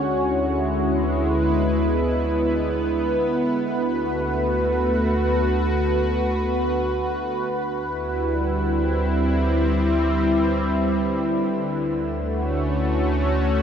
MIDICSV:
0, 0, Header, 1, 3, 480
1, 0, Start_track
1, 0, Tempo, 500000
1, 13077, End_track
2, 0, Start_track
2, 0, Title_t, "Analog synth pad"
2, 0, Program_c, 0, 89
2, 0, Note_on_c, 0, 50, 73
2, 0, Note_on_c, 0, 56, 73
2, 0, Note_on_c, 0, 61, 74
2, 0, Note_on_c, 0, 66, 78
2, 0, Note_on_c, 0, 73, 82
2, 213, Note_on_c, 0, 64, 61
2, 863, Note_on_c, 0, 59, 69
2, 1144, Note_off_c, 0, 73, 0
2, 1146, Note_off_c, 0, 61, 0
2, 1146, Note_off_c, 0, 66, 0
2, 1194, Note_on_c, 0, 71, 62
2, 3423, Note_off_c, 0, 56, 0
2, 3703, Note_on_c, 0, 66, 86
2, 3770, Note_on_c, 0, 57, 68
2, 4943, Note_off_c, 0, 64, 0
2, 7193, Note_off_c, 0, 59, 0
2, 7195, Note_off_c, 0, 57, 0
2, 7543, Note_on_c, 0, 64, 75
2, 7832, Note_on_c, 0, 55, 66
2, 8294, Note_on_c, 0, 60, 80
2, 8710, Note_off_c, 0, 66, 0
2, 11023, Note_off_c, 0, 50, 0
2, 11030, Note_off_c, 0, 60, 0
2, 11033, Note_off_c, 0, 55, 0
2, 11037, Note_on_c, 0, 50, 74
2, 11706, Note_on_c, 0, 57, 59
2, 11773, Note_on_c, 0, 66, 72
2, 11899, Note_on_c, 0, 73, 68
2, 12056, Note_on_c, 0, 61, 75
2, 12579, Note_off_c, 0, 64, 0
2, 12581, Note_off_c, 0, 71, 0
2, 13077, Note_off_c, 0, 50, 0
2, 13077, Note_off_c, 0, 57, 0
2, 13077, Note_off_c, 0, 61, 0
2, 13077, Note_off_c, 0, 66, 0
2, 13077, Note_off_c, 0, 73, 0
2, 13077, End_track
3, 0, Start_track
3, 0, Title_t, "Analog synth bass"
3, 0, Program_c, 1, 38
3, 0, Note_on_c, 1, 38, 89
3, 3370, Note_off_c, 1, 38, 0
3, 3415, Note_on_c, 1, 38, 78
3, 7147, Note_off_c, 1, 38, 0
3, 7191, Note_on_c, 1, 38, 85
3, 10981, Note_off_c, 1, 38, 0
3, 11026, Note_on_c, 1, 38, 80
3, 13077, Note_off_c, 1, 38, 0
3, 13077, End_track
0, 0, End_of_file